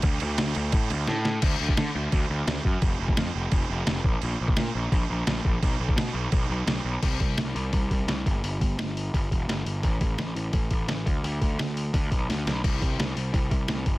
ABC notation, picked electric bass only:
X:1
M:4/4
L:1/8
Q:1/4=171
K:Bm
V:1 name="Picked electric bass" clef=bass
D,, D,, D,, D,, A,, D,, A,,2 | D,, D,, D, D,, D,, D,, D,, F,, | =F,,, F,,, =F,, F,,, F,,, F,,, F,,, _B,,, | _B,,, B,,, _B,, B,,, B,,, B,,, B,,, B,,, |
B,,, B,,, B,, B,,, B,,, B,,, B,,, B,,, | =C,, C,, C,, C,, C,, C,, C,, G,,, | G,,, G,,, G,,,2 G,,, E,,, G,,, G,,, | A,,, A,,, A,,, A,,, A,,, A,,, A,,, D,, |
D,, D,, D,,2 D,, B,,, D,, B,,, | =C,, C,, C,, C,, C,, C,, C,, G,,, |]